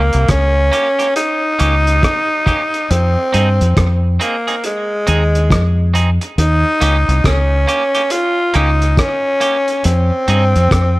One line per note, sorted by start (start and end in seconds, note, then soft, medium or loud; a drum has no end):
0.00 0.11 C#2 medium
0.00 0.26 A#3 loud
0.13 0.28 C2 medium
0.13 closed hi-hat soft
0.28 0.69 C#2 medium
0.28 1.13 C#4 loud
0.28 kick loud
0.28 cross-stick loud
0.28 closed hi-hat loud
0.72 0.87 A#3 medium
0.72 0.88 C#4 medium
0.72 0.88 G4 medium
0.72 closed hi-hat medium
0.99 1.07 A#3 soft
0.99 1.07 C#4 medium
0.99 1.06 G4 medium
0.99 closed hi-hat soft
1.16 2.92 D#4 loud
1.16 closed hi-hat medium
1.59 2.00 C#2 medium
1.59 1.74 A#3 medium
1.59 1.75 C#4 medium
1.59 1.75 G4 medium
1.59 closed hi-hat medium
1.87 closed hi-hat soft
2.03 kick medium
2.03 cross-stick loud
2.03 closed hi-hat medium
2.46 2.61 A#3 medium
2.46 2.62 C#4 medium
2.46 2.62 G4 medium
2.46 kick medium
2.46 closed hi-hat medium
2.74 closed hi-hat soft
2.90 3.15 F2 loud
2.90 3.98 C4 loud
2.90 closed hi-hat medium
3.33 3.59 G2 medium
3.33 3.48 C4 medium
3.33 3.48 D#4 medium
3.33 3.49 G#4 medium
3.33 closed hi-hat medium
3.61 3.76 F2 medium
3.61 closed hi-hat soft
3.77 4.17 F2 medium
3.77 kick loud
3.77 cross-stick loud
3.77 closed hi-hat medium
4.20 4.61 A#3 medium
4.20 4.35 C4 medium
4.20 4.35 D#4 medium
4.20 4.36 G#4 medium
4.20 closed hi-hat medium
4.47 4.55 C4 medium
4.47 4.55 D#4 medium
4.47 4.54 G#4 medium
4.47 closed hi-hat soft
4.64 5.91 G#3 medium
4.64 closed hi-hat medium
5.07 5.51 D#2 medium
5.07 5.22 C4 medium
5.07 5.22 D#4 medium
5.07 5.23 G#4 medium
5.07 closed hi-hat medium
5.35 closed hi-hat medium
5.51 6.17 F2 medium
5.51 kick medium
5.51 cross-stick loud
5.51 closed hi-hat medium
5.94 6.09 C4 medium
5.94 6.09 D#4 medium
5.94 6.10 G#4 medium
5.94 closed hi-hat medium
6.21 muted clean electric guitar stroke soft
6.21 closed hi-hat soft
6.38 6.63 D#2 loud
6.38 7.28 D#4 loud
6.38 closed hi-hat medium
6.81 7.06 C#2 medium
6.81 6.96 A#3 medium
6.81 6.96 C#4 medium
6.81 6.96 G4 medium
6.81 closed hi-hat medium
7.08 7.23 C2 medium
7.08 closed hi-hat soft
7.24 7.65 C#2 medium
7.24 8.13 C#4 loud
7.24 kick loud
7.24 cross-stick loud
7.24 closed hi-hat loud
7.67 7.82 A#3 medium
7.67 7.83 C#4 medium
7.67 7.83 G4 medium
7.67 closed hi-hat medium
7.95 8.03 A#3 medium
7.95 8.02 C#4 medium
7.95 8.02 G4 medium
7.95 closed hi-hat soft
8.10 8.54 F4 loud
8.10 closed hi-hat medium
8.54 8.95 C#2 medium
8.54 8.69 A#3 medium
8.54 8.69 C#4 medium
8.54 9.00 D#4 medium
8.54 8.70 G4 medium
8.54 closed hi-hat medium
8.82 closed hi-hat medium
8.97 9.85 C#4 medium
8.97 kick loud
8.97 cross-stick loud
8.97 closed hi-hat medium
9.40 9.56 A#3 medium
9.40 9.56 C#4 medium
9.40 9.57 G4 medium
9.40 closed hi-hat medium
9.68 closed hi-hat soft
9.84 10.10 F2 medium
9.84 10.99 C4 loud
9.84 closed hi-hat medium
10.28 10.53 G2 medium
10.28 10.43 C4 medium
10.28 10.43 D#4 medium
10.28 10.44 G#4 medium
10.28 closed hi-hat medium
10.56 10.70 F2 medium
10.56 closed hi-hat soft
10.71 10.99 F2 medium
10.71 kick loud
10.71 cross-stick loud
10.71 closed hi-hat loud